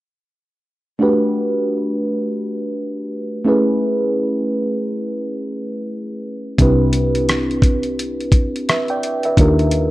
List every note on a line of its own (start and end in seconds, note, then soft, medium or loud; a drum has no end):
0.99 3.40 A3 medium
0.99 3.40 D4 medium
0.99 3.41 F#4 medium
0.99 3.41 G4 medium
0.99 3.42 B4 medium
3.45 6.19 A3 medium
3.45 6.20 C#4 medium
3.45 6.20 E4 soft
3.45 6.21 G#4 medium
3.45 6.21 B4 medium
6.58 9.34 C2 medium
6.58 9.33 C4 medium
6.58 9.34 D4 medium
6.58 9.34 E4 medium
6.58 9.35 G4 medium
6.58 8.65 B4 medium
6.58 kick medium
6.58 closed hi-hat medium
6.93 closed hi-hat medium
7.15 closed hi-hat soft
7.29 cross-stick medium
7.29 closed hi-hat medium
7.51 closed hi-hat soft
7.62 kick medium
7.62 closed hi-hat medium
7.83 closed hi-hat soft
7.99 closed hi-hat medium
8.21 closed hi-hat soft
8.32 kick medium
8.32 closed hi-hat medium
8.56 closed hi-hat soft
8.69 8.89 B4 soft
8.69 8.88 E5 medium
8.69 cross-stick medium
8.69 closed hi-hat medium
8.88 9.23 D5 soft
8.88 9.22 G5 medium
8.88 closed hi-hat soft
9.03 closed hi-hat medium
9.23 9.58 B4 soft
9.23 9.58 E5 soft
9.23 closed hi-hat soft
9.37 9.91 D#2 medium
9.37 9.91 D4 medium
9.37 9.91 D#4 medium
9.37 9.91 F4 medium
9.37 9.91 G4 medium
9.37 9.91 A#4 medium
9.37 kick medium
9.37 closed hi-hat medium
9.59 closed hi-hat soft
9.71 closed hi-hat medium